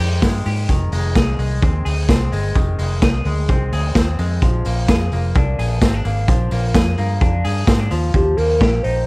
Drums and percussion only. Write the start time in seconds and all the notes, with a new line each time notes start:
0.00 open hi-hat, tambourine
0.22 kick, snare, hi-hat pedal, open hi-hat, tambourine
0.46 hi-hat pedal, open hi-hat, tambourine
0.69 kick, closed hi-hat, tambourine
0.92 open hi-hat, tambourine
1.15 kick, snare, closed hi-hat, tambourine
1.39 open hi-hat, tambourine
1.62 kick, closed hi-hat, tambourine
1.86 open hi-hat, tambourine
2.09 kick, snare, closed hi-hat, tambourine
2.32 open hi-hat, tambourine
2.55 kick, closed hi-hat, tambourine
2.79 open hi-hat, tambourine
3.02 kick, snare, closed hi-hat, tambourine
3.25 open hi-hat
3.48 kick, closed hi-hat, tambourine
3.73 open hi-hat, tambourine
3.95 kick, snare, closed hi-hat, tambourine
4.19 open hi-hat, tambourine
4.42 kick, closed hi-hat, tambourine
4.65 open hi-hat, tambourine
4.88 kick, snare, closed hi-hat, tambourine
5.12 open hi-hat, tambourine
5.35 kick, closed hi-hat, tambourine
5.59 open hi-hat, tambourine
5.82 kick, snare, closed hi-hat, tambourine
6.05 open hi-hat, tambourine
6.28 kick, closed hi-hat, tambourine
6.51 open hi-hat, tambourine
6.74 kick, snare, closed hi-hat, tambourine
6.98 open hi-hat, tambourine
7.21 kick, closed hi-hat, tambourine
7.45 open hi-hat, tambourine
7.67 kick, snare, closed hi-hat, tambourine
7.91 open hi-hat, tambourine
8.14 kick, closed hi-hat
8.38 open hi-hat
8.61 kick, snare, closed hi-hat
8.84 open hi-hat